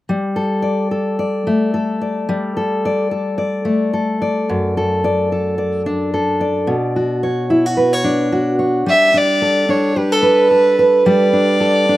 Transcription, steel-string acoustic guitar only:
0.09 G3
0.36 A4
0.62 D5
0.91 A4
1.19 D5
1.47 A3
1.74 A4
2.01 D5
2.29 G3
2.57 A4
2.85 D5
3.11 A4
3.38 D5
3.65 A3
3.93 A4
4.22 D5
4.49 F#2
4.77 A4
5.04 D5
5.32 A4
5.58 D5
5.86 D4
6.14 A4
6.41 D5
6.67 B2
6.96 F#4
7.23 C#5
7.50 E4
7.66 F#4
7.77 B4
7.93 C#5
8.04 D4
8.32 F#4
8.59 C#5
8.86 G3
9.14 D4
9.42 A4
9.69 D4
9.96 G4
10.12 A4
10.22 B4
10.51 A4
10.79 B4
11.06 G3
11.33 D4
11.60 A4
11.89 D4

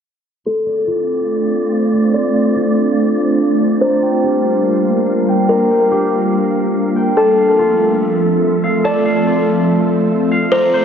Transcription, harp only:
0.46 C6
0.66 D5
0.87 F4
1.93 D5
2.14 C6
2.34 D5
2.56 F4
3.60 D5
3.81 A#5
4.02 G5
4.23 G4
5.28 G5
5.50 A#5
5.71 G5
5.91 G4
6.96 G5
7.17 A5
7.38 F5
7.59 F4
8.64 F5
8.84 A5
9.05 F5
9.27 F4
10.31 F5
10.52 A#5
10.74 C5

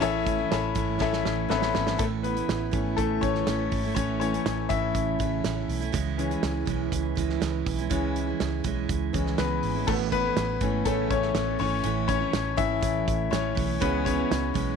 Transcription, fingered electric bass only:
0.02 A1
0.51 A1
0.76 G#1
1.00 A1
1.26 A1
1.50 A1
1.75 G#1
1.99 A1
2.48 A1
2.73 G#1
2.98 A1
3.23 A1
3.46 A1
3.72 G#1
3.96 A1
4.45 A1
4.70 G#1
4.95 A1
5.20 A1
5.44 A1
5.68 B1
5.94 C#2
6.43 C#2
6.67 B1
6.92 C#2
7.17 C#2
7.41 C#2
7.66 B1
7.91 C#2
8.40 C#2
8.64 B1
8.89 C#2
9.14 C#2
9.39 C#2
9.63 G#1
9.88 A1
10.36 A1
10.61 G#1
10.86 A1
11.10 A1
11.35 A1
11.59 G#1
11.84 A1
12.33 A1
12.58 G#1
12.83 A1
13.08 A1
13.32 A1
13.57 B1
13.82 C#2
14.31 C#2
14.55 B1

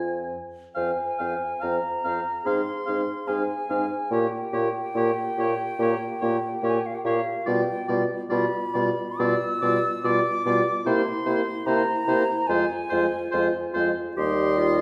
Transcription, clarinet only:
Already playing: F4
0.76 C5
1.20 C5
1.63 C5
2.05 C5
2.45 G#4
2.87 G#4
3.28 G#4
3.69 G#4
4.12 G4
4.53 G4
4.95 G4
5.37 G4
5.79 G4
6.21 G4
6.62 G4
7.05 G4
7.45 F4
7.87 F4
8.30 F4
8.74 F4
9.19 F4
9.63 F4
10.04 F4
10.45 F4
10.86 E4
11.26 E4
11.66 E4
12.07 E4
12.48 F4
12.91 F4
13.32 F4
13.73 F4
14.16 G4
14.58 F4

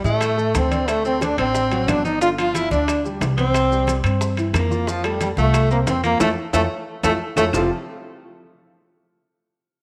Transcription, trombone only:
0.05 A3
0.56 C4
0.89 A3
1.06 C4
1.23 D4
1.39 C4
1.89 D4
2.06 D#4
2.22 F4
2.40 F4
2.57 E4
2.73 D4
3.39 C4
4.56 A#3
4.89 F3
5.05 G3
5.23 G3
5.40 A3
5.72 A#3
5.89 C4
6.06 A#3
6.22 A3
6.54 A3
7.05 A3
7.37 A3
7.54 F4

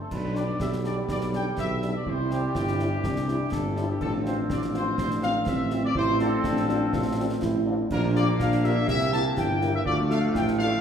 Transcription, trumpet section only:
0.01 A4
0.13 B4
0.36 D5
0.61 E5
0.85 D5
1.10 D5
1.35 G5
1.59 E5
1.96 D5
2.08 C5
2.33 G4
3.53 A4
3.90 G4
4.01 A4
4.27 C5
4.51 D5
4.75 C5
4.98 C5
5.23 F5
5.48 E5
5.84 D5
5.97 C5
6.21 A4
7.92 A#4
8.16 D5
8.41 F5
8.65 E5
8.89 E5
9.13 A5
9.38 G5
9.74 E5
9.86 D5
10.10 F5
10.35 G5
10.59 F5

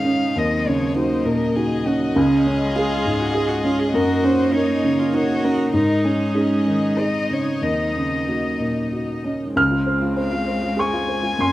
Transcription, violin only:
Already playing: F5
0.38 D#5
0.68 C#5
0.97 C5
1.26 A#4
1.56 G#4
1.87 F#4
2.18 G#4
3.95 A#4
4.24 C5
4.54 C#5
5.16 C#5
5.44 A#4
5.75 A#4
6.05 G#4
6.99 D#5
7.33 C#5
7.63 D#5
10.20 F5
10.80 G#5

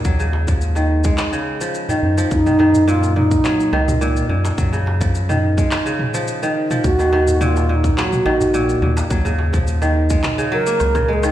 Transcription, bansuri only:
2.32 D#4 F4
2.88 F4
3.16 D#4
6.85 F#4
7.42 F4 F#4
7.70 F4
7.74 D#4
7.99 G#4
8.03 F#4
10.53 A#4
11.10 G#4 A#4

